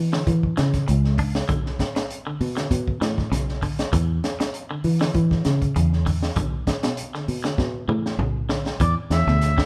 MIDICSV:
0, 0, Header, 1, 6, 480
1, 0, Start_track
1, 0, Tempo, 609756
1, 1166, Time_signature, 4, 2, 24, 8
1, 7601, End_track
2, 0, Start_track
2, 0, Title_t, "Oboe"
2, 0, Program_c, 0, 68
2, 6942, Note_on_c, 0, 74, 102
2, 7046, Note_off_c, 0, 74, 0
2, 7184, Note_on_c, 0, 76, 101
2, 7601, Note_off_c, 0, 76, 0
2, 7601, End_track
3, 0, Start_track
3, 0, Title_t, "Clean electric guitar"
3, 0, Program_c, 1, 27
3, 105, Note_on_c, 1, 50, 67
3, 271, Note_off_c, 1, 50, 0
3, 451, Note_on_c, 1, 52, 67
3, 618, Note_off_c, 1, 52, 0
3, 937, Note_on_c, 1, 62, 67
3, 1102, Note_off_c, 1, 62, 0
3, 1173, Note_on_c, 1, 50, 79
3, 1339, Note_off_c, 1, 50, 0
3, 1784, Note_on_c, 1, 50, 67
3, 1950, Note_off_c, 1, 50, 0
3, 2021, Note_on_c, 1, 50, 72
3, 2188, Note_off_c, 1, 50, 0
3, 2373, Note_on_c, 1, 52, 71
3, 2539, Note_off_c, 1, 52, 0
3, 2611, Note_on_c, 1, 49, 73
3, 2777, Note_off_c, 1, 49, 0
3, 2855, Note_on_c, 1, 50, 75
3, 3020, Note_off_c, 1, 50, 0
3, 3094, Note_on_c, 1, 52, 92
3, 3260, Note_off_c, 1, 52, 0
3, 3705, Note_on_c, 1, 50, 66
3, 3870, Note_off_c, 1, 50, 0
3, 3943, Note_on_c, 1, 50, 69
3, 4109, Note_off_c, 1, 50, 0
3, 4534, Note_on_c, 1, 49, 66
3, 4699, Note_off_c, 1, 49, 0
3, 4774, Note_on_c, 1, 50, 65
3, 4939, Note_off_c, 1, 50, 0
3, 5014, Note_on_c, 1, 50, 88
3, 5180, Note_off_c, 1, 50, 0
3, 5387, Note_on_c, 1, 47, 68
3, 5551, Note_off_c, 1, 47, 0
3, 5626, Note_on_c, 1, 50, 62
3, 5791, Note_off_c, 1, 50, 0
3, 5856, Note_on_c, 1, 50, 70
3, 6024, Note_off_c, 1, 50, 0
3, 6211, Note_on_c, 1, 52, 71
3, 6377, Note_off_c, 1, 52, 0
3, 6447, Note_on_c, 1, 49, 64
3, 6615, Note_off_c, 1, 49, 0
3, 6691, Note_on_c, 1, 50, 62
3, 6857, Note_off_c, 1, 50, 0
3, 6935, Note_on_c, 1, 52, 83
3, 7100, Note_off_c, 1, 52, 0
3, 7304, Note_on_c, 1, 47, 69
3, 7469, Note_off_c, 1, 47, 0
3, 7542, Note_on_c, 1, 50, 67
3, 7601, Note_off_c, 1, 50, 0
3, 7601, End_track
4, 0, Start_track
4, 0, Title_t, "Fingered electric bass"
4, 0, Program_c, 2, 33
4, 0, Note_on_c, 2, 52, 80
4, 182, Note_off_c, 2, 52, 0
4, 211, Note_on_c, 2, 52, 92
4, 420, Note_off_c, 2, 52, 0
4, 461, Note_on_c, 2, 49, 77
4, 665, Note_off_c, 2, 49, 0
4, 699, Note_on_c, 2, 37, 95
4, 1115, Note_off_c, 2, 37, 0
4, 1174, Note_on_c, 2, 35, 96
4, 1381, Note_off_c, 2, 35, 0
4, 1894, Note_on_c, 2, 47, 92
4, 2101, Note_off_c, 2, 47, 0
4, 2131, Note_on_c, 2, 47, 93
4, 2339, Note_off_c, 2, 47, 0
4, 2370, Note_on_c, 2, 45, 77
4, 2579, Note_off_c, 2, 45, 0
4, 2610, Note_on_c, 2, 35, 97
4, 3029, Note_off_c, 2, 35, 0
4, 3092, Note_on_c, 2, 40, 102
4, 3300, Note_off_c, 2, 40, 0
4, 3813, Note_on_c, 2, 52, 81
4, 4020, Note_off_c, 2, 52, 0
4, 4052, Note_on_c, 2, 52, 93
4, 4260, Note_off_c, 2, 52, 0
4, 4298, Note_on_c, 2, 49, 81
4, 4503, Note_off_c, 2, 49, 0
4, 4535, Note_on_c, 2, 40, 104
4, 4952, Note_off_c, 2, 40, 0
4, 5009, Note_on_c, 2, 35, 94
4, 5218, Note_off_c, 2, 35, 0
4, 5733, Note_on_c, 2, 47, 80
4, 5940, Note_off_c, 2, 47, 0
4, 5968, Note_on_c, 2, 47, 93
4, 6177, Note_off_c, 2, 47, 0
4, 6204, Note_on_c, 2, 45, 82
4, 6415, Note_off_c, 2, 45, 0
4, 6443, Note_on_c, 2, 35, 97
4, 6864, Note_off_c, 2, 35, 0
4, 6928, Note_on_c, 2, 40, 98
4, 7040, Note_off_c, 2, 40, 0
4, 7166, Note_on_c, 2, 40, 86
4, 7278, Note_off_c, 2, 40, 0
4, 7299, Note_on_c, 2, 38, 105
4, 7601, Note_off_c, 2, 38, 0
4, 7601, End_track
5, 0, Start_track
5, 0, Title_t, "Muted clean electric guitar strokes"
5, 690, Note_on_c, 9, 29, 62
5, 769, Note_off_c, 9, 29, 0
5, 1547, Note_on_c, 9, 29, 73
5, 1625, Note_off_c, 9, 29, 0
5, 3465, Note_on_c, 9, 29, 71
5, 3543, Note_off_c, 9, 29, 0
5, 7601, End_track
6, 0, Start_track
6, 0, Title_t, "Drums"
6, 101, Note_on_c, 9, 38, 68
6, 180, Note_off_c, 9, 38, 0
6, 211, Note_on_c, 9, 36, 68
6, 211, Note_on_c, 9, 42, 69
6, 290, Note_off_c, 9, 36, 0
6, 290, Note_off_c, 9, 42, 0
6, 341, Note_on_c, 9, 36, 57
6, 420, Note_off_c, 9, 36, 0
6, 450, Note_on_c, 9, 42, 50
6, 453, Note_on_c, 9, 38, 66
6, 529, Note_off_c, 9, 42, 0
6, 531, Note_off_c, 9, 38, 0
6, 579, Note_on_c, 9, 42, 43
6, 580, Note_on_c, 9, 36, 63
6, 581, Note_on_c, 9, 38, 23
6, 658, Note_off_c, 9, 42, 0
6, 659, Note_off_c, 9, 36, 0
6, 660, Note_off_c, 9, 38, 0
6, 692, Note_on_c, 9, 42, 70
6, 771, Note_off_c, 9, 42, 0
6, 822, Note_on_c, 9, 38, 24
6, 901, Note_off_c, 9, 38, 0
6, 929, Note_on_c, 9, 46, 61
6, 930, Note_on_c, 9, 36, 61
6, 1008, Note_off_c, 9, 46, 0
6, 1009, Note_off_c, 9, 36, 0
6, 1063, Note_on_c, 9, 38, 72
6, 1142, Note_off_c, 9, 38, 0
6, 1172, Note_on_c, 9, 36, 88
6, 1172, Note_on_c, 9, 42, 62
6, 1250, Note_off_c, 9, 36, 0
6, 1251, Note_off_c, 9, 42, 0
6, 1308, Note_on_c, 9, 38, 29
6, 1387, Note_off_c, 9, 38, 0
6, 1412, Note_on_c, 9, 36, 65
6, 1415, Note_on_c, 9, 42, 44
6, 1418, Note_on_c, 9, 38, 65
6, 1491, Note_off_c, 9, 36, 0
6, 1494, Note_off_c, 9, 42, 0
6, 1496, Note_off_c, 9, 38, 0
6, 1542, Note_on_c, 9, 42, 51
6, 1545, Note_on_c, 9, 38, 66
6, 1621, Note_off_c, 9, 42, 0
6, 1624, Note_off_c, 9, 38, 0
6, 1655, Note_on_c, 9, 42, 62
6, 1734, Note_off_c, 9, 42, 0
6, 1894, Note_on_c, 9, 46, 60
6, 1973, Note_off_c, 9, 46, 0
6, 2025, Note_on_c, 9, 42, 47
6, 2027, Note_on_c, 9, 38, 61
6, 2103, Note_off_c, 9, 42, 0
6, 2106, Note_off_c, 9, 38, 0
6, 2132, Note_on_c, 9, 36, 64
6, 2132, Note_on_c, 9, 42, 70
6, 2211, Note_off_c, 9, 36, 0
6, 2211, Note_off_c, 9, 42, 0
6, 2263, Note_on_c, 9, 36, 67
6, 2342, Note_off_c, 9, 36, 0
6, 2375, Note_on_c, 9, 42, 44
6, 2377, Note_on_c, 9, 38, 71
6, 2453, Note_off_c, 9, 42, 0
6, 2456, Note_off_c, 9, 38, 0
6, 2503, Note_on_c, 9, 36, 65
6, 2506, Note_on_c, 9, 38, 24
6, 2582, Note_off_c, 9, 36, 0
6, 2585, Note_off_c, 9, 38, 0
6, 2617, Note_on_c, 9, 42, 72
6, 2620, Note_on_c, 9, 38, 28
6, 2696, Note_off_c, 9, 42, 0
6, 2699, Note_off_c, 9, 38, 0
6, 2745, Note_on_c, 9, 38, 24
6, 2824, Note_off_c, 9, 38, 0
6, 2851, Note_on_c, 9, 36, 63
6, 2852, Note_on_c, 9, 46, 58
6, 2930, Note_off_c, 9, 36, 0
6, 2930, Note_off_c, 9, 46, 0
6, 2983, Note_on_c, 9, 42, 48
6, 2985, Note_on_c, 9, 38, 63
6, 3061, Note_off_c, 9, 42, 0
6, 3064, Note_off_c, 9, 38, 0
6, 3092, Note_on_c, 9, 36, 94
6, 3092, Note_on_c, 9, 42, 69
6, 3170, Note_off_c, 9, 36, 0
6, 3170, Note_off_c, 9, 42, 0
6, 3335, Note_on_c, 9, 42, 43
6, 3338, Note_on_c, 9, 38, 66
6, 3414, Note_off_c, 9, 42, 0
6, 3416, Note_off_c, 9, 38, 0
6, 3466, Note_on_c, 9, 42, 53
6, 3468, Note_on_c, 9, 38, 75
6, 3544, Note_off_c, 9, 42, 0
6, 3547, Note_off_c, 9, 38, 0
6, 3572, Note_on_c, 9, 42, 57
6, 3651, Note_off_c, 9, 42, 0
6, 3809, Note_on_c, 9, 46, 61
6, 3888, Note_off_c, 9, 46, 0
6, 3945, Note_on_c, 9, 38, 73
6, 4024, Note_off_c, 9, 38, 0
6, 4050, Note_on_c, 9, 36, 76
6, 4050, Note_on_c, 9, 42, 64
6, 4128, Note_off_c, 9, 42, 0
6, 4129, Note_off_c, 9, 36, 0
6, 4181, Note_on_c, 9, 36, 65
6, 4185, Note_on_c, 9, 38, 27
6, 4260, Note_off_c, 9, 36, 0
6, 4263, Note_off_c, 9, 38, 0
6, 4287, Note_on_c, 9, 42, 46
6, 4290, Note_on_c, 9, 38, 58
6, 4366, Note_off_c, 9, 42, 0
6, 4368, Note_off_c, 9, 38, 0
6, 4421, Note_on_c, 9, 36, 66
6, 4421, Note_on_c, 9, 42, 45
6, 4500, Note_off_c, 9, 36, 0
6, 4500, Note_off_c, 9, 42, 0
6, 4533, Note_on_c, 9, 42, 71
6, 4612, Note_off_c, 9, 42, 0
6, 4667, Note_on_c, 9, 38, 22
6, 4746, Note_off_c, 9, 38, 0
6, 4771, Note_on_c, 9, 36, 61
6, 4774, Note_on_c, 9, 46, 62
6, 4850, Note_off_c, 9, 36, 0
6, 4853, Note_off_c, 9, 46, 0
6, 4901, Note_on_c, 9, 38, 56
6, 4980, Note_off_c, 9, 38, 0
6, 5006, Note_on_c, 9, 42, 65
6, 5010, Note_on_c, 9, 36, 83
6, 5085, Note_off_c, 9, 42, 0
6, 5088, Note_off_c, 9, 36, 0
6, 5251, Note_on_c, 9, 36, 64
6, 5252, Note_on_c, 9, 42, 46
6, 5254, Note_on_c, 9, 38, 73
6, 5330, Note_off_c, 9, 36, 0
6, 5330, Note_off_c, 9, 42, 0
6, 5333, Note_off_c, 9, 38, 0
6, 5377, Note_on_c, 9, 42, 51
6, 5379, Note_on_c, 9, 38, 68
6, 5455, Note_off_c, 9, 42, 0
6, 5458, Note_off_c, 9, 38, 0
6, 5488, Note_on_c, 9, 42, 73
6, 5566, Note_off_c, 9, 42, 0
6, 5624, Note_on_c, 9, 38, 25
6, 5703, Note_off_c, 9, 38, 0
6, 5733, Note_on_c, 9, 46, 60
6, 5811, Note_off_c, 9, 46, 0
6, 5861, Note_on_c, 9, 42, 50
6, 5863, Note_on_c, 9, 38, 65
6, 5940, Note_off_c, 9, 42, 0
6, 5942, Note_off_c, 9, 38, 0
6, 5969, Note_on_c, 9, 36, 76
6, 5972, Note_on_c, 9, 38, 50
6, 6048, Note_off_c, 9, 36, 0
6, 6051, Note_off_c, 9, 38, 0
6, 6210, Note_on_c, 9, 47, 53
6, 6288, Note_off_c, 9, 47, 0
6, 6344, Note_on_c, 9, 38, 53
6, 6423, Note_off_c, 9, 38, 0
6, 6449, Note_on_c, 9, 45, 67
6, 6527, Note_off_c, 9, 45, 0
6, 6686, Note_on_c, 9, 38, 70
6, 6765, Note_off_c, 9, 38, 0
6, 6819, Note_on_c, 9, 38, 55
6, 6898, Note_off_c, 9, 38, 0
6, 6926, Note_on_c, 9, 42, 63
6, 6928, Note_on_c, 9, 36, 89
6, 7005, Note_off_c, 9, 42, 0
6, 7007, Note_off_c, 9, 36, 0
6, 7169, Note_on_c, 9, 42, 52
6, 7171, Note_on_c, 9, 38, 65
6, 7248, Note_off_c, 9, 42, 0
6, 7250, Note_off_c, 9, 38, 0
6, 7302, Note_on_c, 9, 38, 29
6, 7381, Note_off_c, 9, 38, 0
6, 7410, Note_on_c, 9, 42, 61
6, 7413, Note_on_c, 9, 38, 31
6, 7489, Note_off_c, 9, 42, 0
6, 7491, Note_off_c, 9, 38, 0
6, 7538, Note_on_c, 9, 36, 75
6, 7544, Note_on_c, 9, 38, 67
6, 7601, Note_off_c, 9, 36, 0
6, 7601, Note_off_c, 9, 38, 0
6, 7601, End_track
0, 0, End_of_file